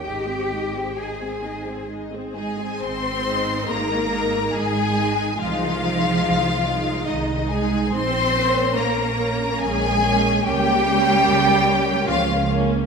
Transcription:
<<
  \new Staff \with { instrumentName = "Violin section" } { \time 3/4 \key aes \major \tempo 4 = 71 << { r2 r8 aes''8 | c'''4 bes''4 aes''4 | f''2 ees''8 aes''8 | c'''4 bes''4 aes''4 |
g''2 f''8 r8 | } \\ { ees''16 c''16 ees''16 c''16 ees''16 c''16 ees''16 c''16 ees''16 c''16 ees''16 c''16 | r2. | r2. | r2. |
r2. | } >> }
  \new Staff \with { instrumentName = "Violin section" } { \time 3/4 \key aes \major g''4 aes''4 r8 aes'8 | c''4 bes'4 aes'4 | f'2 ees'8 aes'8 | c''4 bes'4 aes'4 |
g'2 f'8 r8 | }
  \new Staff \with { instrumentName = "Viola section" } { \time 3/4 \key aes \major <aes ees'>16 <c' aes'>16 <aes ees'>16 <c' aes'>16 <aes ees'>16 <c' aes'>16 <aes ees'>16 <c' aes'>16 <aes ees'>16 <c' aes'>16 <aes ees'>16 <c' aes'>16 | r8 <aes ees'>4 <aes ees'>4 <aes ees'>8 | <aes ees'>8 <aes ees'>4 <aes ees'>4 <aes ees'>8 | r8 <bes des'>4 <bes des'>4 <bes des'>8 |
<bes des'>8 <bes des'>4 <bes des'>4 <bes des'>8 | }
  \new Staff \with { instrumentName = "Cello section" } { \clef bass \time 3/4 \key aes \major g'4 aes'4 r8 aes8 | c'4 bes4 aes4 | f2 ees8 aes8 | c'4 bes4 aes4 |
g2 f8 r8 | }
  \new Staff \with { instrumentName = "Double bass section" } { \clef bass \time 3/4 \key aes \major aes,,2~ aes,,8. r16 | aes,,4 aes,,4 aes,,4 | c,4 c,4 c,4 | bes,,4 bes,,4 bes,,4 |
des,4 des,4 des,4 | }
>>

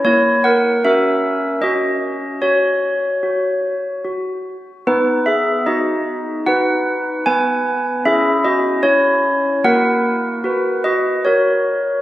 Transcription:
\new Staff \with { instrumentName = "Handbells" } { \time 3/4 \key b \major \tempo 4 = 75 << { <e' cis''>8 <ais' fis''>8 <ais' e''>4 <fis' dis''>4 | <fis' cis''>2 r4 | <dis' b'>8 <gis' e''>8 <fis' dis''>4 <b' fis''>4 | <b' gis''>4 <gis' e''>8 <fis' dis''>8 <e' cis''>4 |
<ais' fis''>4. <fis' dis''>8 <fis' cis''>4 | } \\ { ais4 <cis' fis'>4 cis'4 | r4 fis'4 fis'4 | b4 dis'4 <dis' fis'>4 | b4 <cis' e'>4 cis'4 |
<ais e' fis'>4 <fis' b'>4 ais'4 | } >> }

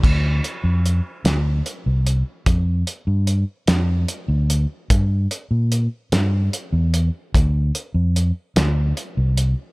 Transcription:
<<
  \new Staff \with { instrumentName = "Fingered electric bass" } { \clef bass \time 6/8 \key d \minor \tempo 4. = 49 d,8 r16 f,8 r16 d,8 r16 c,8 r16 | f,8 r16 g,8 r16 f,8 r16 d,8 r16 | g,8 r16 bes,8 r16 g,8 r16 e,8 r16 | d,8 r16 f,8 r16 d,8 r16 c,8 r16 | }
  \new DrumStaff \with { instrumentName = "Drums" } \drummode { \time 6/8 <cymc bd>8 hh8 hh8 <hh sn>8 hh8 hh8 | <hh bd>8 hh8 hh8 <hh sn>8 hh8 hh8 | <hh bd>8 hh8 hh8 <hh sn>8 hh8 hh8 | <hh bd>8 hh8 hh8 <hh sn>8 hh8 hh8 | }
>>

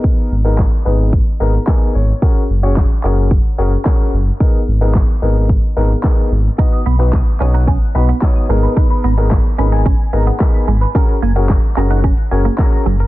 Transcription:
<<
  \new Staff \with { instrumentName = "Synth arpeggio sound" } { \time 4/4 \key gis \minor \tempo 4 = 110 r1 | r1 | r1 | dis''16 dis''16 b''16 r16 dis'''16 r16 dis'''16 fis''16 r8 b''16 r16 dis'''16 dis'''16 r16 b'16 |
b'16 b'16 ais''16 r16 b''16 r16 b''16 gis''16 r8 ais''16 r16 b''16 b''16 r16 b'16 | ais'16 ais'16 gis''16 r16 ais''16 r16 ais''16 fis''16 r8 gis''16 r16 ais''16 ais''16 r16 ais'16 | }
  \new Staff \with { instrumentName = "Grand piano" } { \time 4/4 \key gis \minor << { r2 r8 ais''8 gis''8 cis''8 | r1 | r1 | r1 |
r4. b''8 gis''8. fis''16 gis''4 | r1 | } \\ { <b dis' gis' ais'>8 r16 <b dis' gis' ais'>16 r8 <b dis' gis' b'>8 r8 <b dis' gis' ais'>16 r16 <b dis' gis' ais'>8 r8 | <cis' fis' gis' ais'>16 r8 <cis' fis' gis' cis''>16 r8 <cis' fis' gis' ais'>8 r8 <cis' fis' gis' ais'>16 r16 <cis' fis' gis' ais'>8 r8 | <b dis' gis' ais'>16 r8 <b dis' gis' ais'>16 r8 <b dis' gis' ais'>8 r8 <b dis' gis' ais'>16 r16 <b dis' gis' ais'>8 r8 | <b dis' fis' b'>16 r8 <b dis' fis' b'>16 r8 <b dis' fis' cis''>8 r8 <b dis' fis' b'>16 r16 <b dis' fis' cis''>8 <b dis' gis' ais'>8~ |
<b dis' gis' ais'>8 r16 <b dis' gis' ais'>16 r8 <b dis' gis' ais'>8 r8 <b dis' gis' ais'>16 r16 <b dis' gis' ais'>8 r8 | <cis' fis' gis' ais'>16 r8 <cis' fis' gis' ais'>16 r8 <cis' fis' gis' ais'>8 r8 <cis' fis' gis' ais'>16 r16 <cis' fis' gis' ais'>8 r8 | } >> }
  \new Staff \with { instrumentName = "Clean electric guitar" } { \time 4/4 \key gis \minor r1 | r1 | r1 | dis'16 r16 b16 r8. cis'16 dis'16 cis'16 r8 b16 r8 gis16 r16 |
dis'16 r16 b16 r8. cis'16 dis'16 cis'16 r8 b16 r8 gis16 r16 | cis'16 r16 ais16 r8. cis'16 dis'16 cis'16 r8 ais16 r8 fis16 r16 | }
  \new Staff \with { instrumentName = "Sub bass" } { \clef bass \time 4/4 \key gis \minor r8 gis,,4 gis,,4 gis,,8 r8 gis,,8 | r8 fis,,4 fis,,4 fis,,8 r8 fis,,8 | r8 gis,,4 gis,,4 gis,,8 r8 gis,,8 | r8 b,,4 b,,4 b,,8 r8 gis,,8 |
r8 gis,,4 gis,,4 gis,,8 r8 gis,,8 | r8 fis,,4 fis,,4 fis,,8 r8 fis,,8 | }
  \new DrumStaff \with { instrumentName = "Drums" } \drummode { \time 4/4 bd4 <hc bd sn>4 bd4 <hc bd sn>4 | bd4 <hc bd sn>8 hc8 bd4 <hc bd sn>4 | bd4 <hc bd sn>4 bd4 <hc bd sn>4 | bd4 <hc bd sn>8 hc8 bd4 <hc bd sn>4 |
bd4 <hc bd sn>4 bd4 <hc bd sn>4 | <hh bd>16 hh8 hh16 <hc hh bd sn>16 hh16 hc16 hh16 <hh bd>16 hh8 hh16 <hc hh bd sn>16 hh8 hh16 | }
>>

